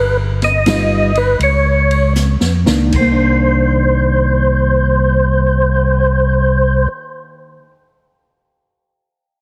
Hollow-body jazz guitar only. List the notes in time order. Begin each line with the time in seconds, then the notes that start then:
0.67 G3 D#4 F4 B4
2.67 D#3 A#3 D4
2.87 D#3
3.01 A#3
3.12 D4